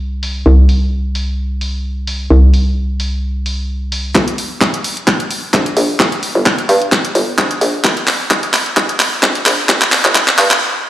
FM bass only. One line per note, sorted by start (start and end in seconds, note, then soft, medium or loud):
0.00 0.44 C2 medium
0.46 2.28 C2 medium
2.31 4.13 C2 medium
4.15 4.37 G1 loud
5.54 5.75 A#1 medium
5.77 5.98 A#1 medium
6.00 6.10 G1 medium
6.35 6.67 G1 loud
6.69 6.90 G2 medium
7.15 7.37 G1 loud
7.38 7.60 A#1 loud
7.61 7.83 A#1 loud
7.84 8.06 G1 loud
9.23 9.44 A#1 loud
9.46 9.67 A#1 loud
9.69 9.80 G1 loud
10.05 10.37 G1 loud
10.38 10.60 G2 loud